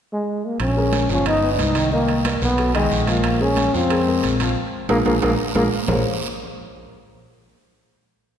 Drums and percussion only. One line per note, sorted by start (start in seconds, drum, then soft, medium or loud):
0.60 high conga soft
0.60 high timbale medium
0.60 long guiro medium
0.76 high conga soft
0.93 high conga medium
0.93 high timbale medium
0.93 short guiro medium
1.09 high conga soft
1.09 short guiro medium
1.26 high conga soft
1.26 high timbale loud
1.26 long guiro medium
1.42 high conga soft
1.59 high conga medium
1.59 high timbale medium
1.59 short guiro medium
1.75 high conga soft
1.75 high timbale medium
1.75 short guiro medium
1.92 high conga soft
1.92 long guiro medium
2.08 high conga soft
2.08 high timbale medium
2.25 high conga medium
2.25 high timbale loud
2.25 short guiro medium
2.41 high conga soft
2.41 short guiro medium
2.58 high timbale medium
2.58 long guiro medium
2.75 high conga soft
2.75 high timbale medium
2.91 high conga soft
2.91 short guiro medium
3.07 high conga medium
3.07 high timbale medium
3.07 short guiro medium
3.24 high timbale loud
3.24 long guiro medium
3.41 high conga soft
3.57 high conga medium
3.57 high timbale medium
3.57 short guiro medium
3.74 high conga soft
3.74 short guiro medium
3.90 high conga soft
3.90 high timbale loud
3.90 long guiro medium
4.07 high conga soft
4.23 high conga medium
4.23 high timbale medium
4.23 short guiro medium
4.40 high conga soft
4.40 high timbale medium
4.40 short guiro medium
4.89 high conga loud
4.89 high timbale loud
4.89 long guiro medium
5.06 high conga loud
5.06 high timbale medium
5.06 long guiro medium
5.22 high conga medium
5.22 high timbale loud
5.22 long guiro medium
5.55 high conga medium
5.55 high timbale medium
5.55 long guiro loud
5.88 low conga loud
5.88 low timbale loud
5.88 long guiro loud